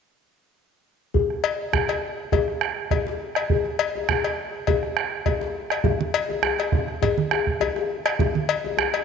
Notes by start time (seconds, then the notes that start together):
1.14 bombo low, djembe bass
1.30 bombo rim, djembe slap
1.44 cowbell
1.73 bombo rim, bombo low, djembe bass
1.88 cowbell, djembe slap
2.03 djembe slap
2.32 bombo low, cowbell, djembe tone, djembe bass
2.48 bombo rim
2.61 bombo rim
2.91 bombo rim, bombo low, cowbell, djembe slap, djembe bass
3.07 djembe slap, djembe tone
3.35 bombo rim, cowbell
3.50 bombo low, djembe bass
3.66 bombo rim, djembe slap
3.79 cowbell
3.96 djembe tone
4.09 bombo rim, bombo low, djembe bass
4.24 cowbell, djembe slap
4.67 bombo low, cowbell, djembe tone, djembe bass
4.83 bombo rim
4.97 bombo rim
5.26 bombo rim, bombo low, cowbell, djembe slap, djembe bass
5.41 djembe slap, djembe tone
5.70 bombo rim, cowbell
5.84 bombo low, djembe slap, djembe tone, djembe bass, low conga
5.99 djembe slap, high conga
6.14 cowbell
6.29 djembe slap, djembe tone, high conga
6.43 bombo rim, djembe bass
6.59 cowbell, djembe slap
6.72 bombo low, djembe slap, djembe tone
6.88 bombo rim
7.02 cowbell, djembe bass, low conga
7.18 high conga
7.31 bombo rim, djembe tone
7.47 bombo low
7.60 bombo rim, cowbell, djembe bass
7.76 bombo rim, djembe slap, djembe tone
8.06 bombo rim, cowbell
8.19 bombo low, djembe slap, djembe tone, djembe bass, low conga
8.35 djembe slap, high conga
8.49 cowbell
8.65 djembe slap, djembe tone, high conga
8.77 bombo rim, djembe bass
8.93 cowbell, djembe slap